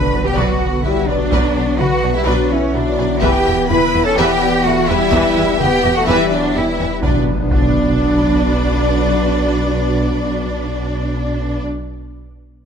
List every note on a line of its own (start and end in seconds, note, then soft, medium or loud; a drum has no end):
0.00 3.24 B1 medium
0.00 3.19 D3 loud
0.00 3.19 B3 medium
0.00 0.26 D4 medium
0.00 3.19 F#4 loud
0.00 1.05 A4 medium
0.00 0.25 B4 medium
0.00 3.19 B4 medium
0.00 0.25 B5 medium
0.00 impact medium
0.13 0.21 B1 medium
0.13 0.21 F#3 medium
0.13 0.21 B4 medium
0.13 0.21 D5 medium
0.26 0.36 B3 medium
0.26 0.37 G4 loud
0.26 0.37 G5 medium
0.36 0.45 B1 medium
0.36 0.59 F#3 loud
0.36 0.84 B3 medium
0.36 0.84 F#4 medium
0.36 0.59 B4 medium
0.36 0.59 D5 medium
0.36 0.84 F#5 medium
0.84 0.92 B1 medium
0.84 0.92 F#3 medium
0.84 1.09 G3 loud
0.84 1.07 E4 medium
0.84 0.92 F#4 medium
0.84 0.93 B4 medium
0.84 1.08 E5 medium
1.07 1.16 B1 medium
1.07 1.16 F#3 medium
1.07 1.80 F#3 medium
1.07 1.79 D4 loud
1.07 1.16 B4 medium
1.07 1.78 D5 medium
1.07 1.17 D5 medium
1.32 1.40 B1 medium
1.32 1.54 F#3 medium
1.32 1.54 B4 loud
1.32 1.54 D5 medium
1.32 taiko loud
1.55 1.64 B1 medium
1.55 1.64 F#3 medium
1.55 1.63 B4 medium
1.55 1.63 D5 medium
1.55 taiko rim soft
1.79 1.88 B1 medium
1.79 1.87 F#3 medium
1.79 2.15 B3 medium
1.79 1.87 F#4 medium
1.79 2.15 F#4 loud
1.79 1.88 B4 medium
1.79 3.19 B4 medium
1.79 2.15 F#5 medium
1.79 taiko mid medium
2.02 2.12 B1 medium
2.02 2.10 F#3 medium
2.02 2.10 B4 medium
2.02 2.11 D5 medium
2.02 taiko rim soft
2.15 2.28 G3 medium
2.15 2.27 E4 loud
2.15 2.27 E5 medium
2.26 2.36 B1 loud
2.26 2.50 F#3 medium
2.26 2.49 F#3 loud
2.26 2.51 D4 loud
2.26 2.49 B4 loud
2.26 2.49 D5 medium
2.26 2.51 D5 medium
2.50 2.75 E3 medium
2.50 2.75 C#4 medium
2.50 3.90 E4 medium
2.50 2.75 C#5 medium
2.50 3.91 E5 medium
2.74 2.83 B1 medium
2.74 3.22 F#3 medium
2.74 2.83 F#3 medium
2.74 3.22 D4 medium
2.74 2.83 F#4 medium
2.74 2.83 B4 medium
2.74 3.22 D5 loud
2.98 3.07 B1 medium
2.98 3.07 F#3 medium
2.98 3.06 B4 medium
2.98 3.07 D5 medium
2.98 taiko rim soft
3.22 7.03 E1 medium
3.22 3.30 E2 loud
3.22 7.04 E3 medium
3.22 3.45 E3 loud
3.22 6.99 B3 loud
3.22 3.69 B3 loud
3.22 7.04 E4 loud
3.22 3.70 G4 loud
3.22 6.99 B4 loud
3.22 3.45 B4 loud
3.22 3.45 E5 medium
3.22 3.70 G5 loud
3.22 taiko loud
3.47 3.55 E2 medium
3.47 3.55 E3 medium
3.47 3.55 B4 medium
3.47 3.55 E5 medium
3.69 3.78 E2 medium
3.69 3.78 E3 medium
3.69 4.05 E4 loud
3.69 3.78 G4 medium
3.69 4.05 B4 loud
3.69 3.78 B4 medium
3.69 4.04 B5 loud
3.69 taiko mid medium
3.94 4.02 E2 medium
3.94 4.03 E3 medium
3.94 4.03 B4 medium
3.94 4.02 E5 medium
4.05 4.17 C#4 loud
4.05 4.18 A4 loud
4.05 4.17 A5 loud
4.17 4.26 E2 loud
4.17 4.40 E3 loud
4.17 4.66 B3 loud
4.17 4.65 G4 loud
4.17 4.40 B4 loud
4.17 4.39 E5 loud
4.17 4.64 G5 loud
4.42 5.81 D5 medium
4.65 4.74 E2 medium
4.65 4.74 E3 medium
4.65 4.89 A3 loud
4.65 4.89 F#4 loud
4.65 4.73 G4 medium
4.65 4.74 B4 medium
4.65 4.89 F#5 loud
4.88 4.97 E2 medium
4.88 4.98 E3 medium
4.88 5.59 G3 loud
4.88 5.60 E4 loud
4.88 4.98 B4 loud
4.88 4.96 E5 loud
4.88 5.60 E5 loud
4.88 taiko rim soft
5.12 5.20 E2 loud
5.12 5.36 E3 loud
5.12 5.36 B4 loud
5.12 5.35 E5 loud
5.12 taiko loud
5.36 5.45 E2 medium
5.36 5.46 E3 medium
5.36 5.46 B4 medium
5.36 5.44 E5 medium
5.60 5.69 E2 medium
5.60 5.70 E3 medium
5.60 5.96 B3 loud
5.60 5.95 G4 loud
5.60 5.70 G4 medium
5.60 5.69 B4 medium
5.60 5.96 G5 loud
5.60 taiko mid medium
5.83 5.92 E2 loud
5.83 5.93 E3 medium
5.83 5.93 B4 medium
5.83 5.91 E5 medium
5.95 6.08 A3 loud
5.95 6.08 F#4 loud
5.95 6.08 F#5 loud
6.07 6.16 E2 loud
6.07 6.30 E3 loud
6.07 6.31 G3 loud
6.07 6.31 E4 loud
6.07 7.00 E4 medium
6.07 6.30 B4 loud
6.07 6.31 E5 loud
6.07 6.30 E5 loud
6.07 7.00 E5 medium
6.30 6.56 F#3 loud
6.30 6.55 D4 loud
6.30 6.54 D5 loud
6.54 6.64 E2 medium
6.54 6.64 E3 medium
6.54 7.03 G3 loud
6.54 7.03 E4 loud
6.54 6.64 G4 medium
6.54 6.64 B4 medium
6.54 7.03 E5 medium
6.79 6.87 E2 medium
6.79 6.87 E3 medium
6.79 6.87 B4 medium
6.79 6.87 E5 medium
7.02 7.18 B1 medium
7.02 7.17 B1 medium
7.02 11.44 F#3 medium
7.02 11.44 B3 medium
7.02 11.43 D4 loud
7.02 7.17 D4 medium
7.02 11.44 D4 medium
7.02 7.17 F#4 medium
7.02 7.17 B4 medium
7.02 11.44 B4 loud
7.02 7.17 D5 medium
7.02 taiko loud
7.02 impact loud
7.50 11.60 B1 medium
7.50 11.61 B1 medium
7.50 11.60 D4 loud
7.50 11.60 F#4 loud
7.50 11.60 B4 medium
7.50 11.60 D5 loud
7.50 11.61 D5 medium
7.50 taiko loud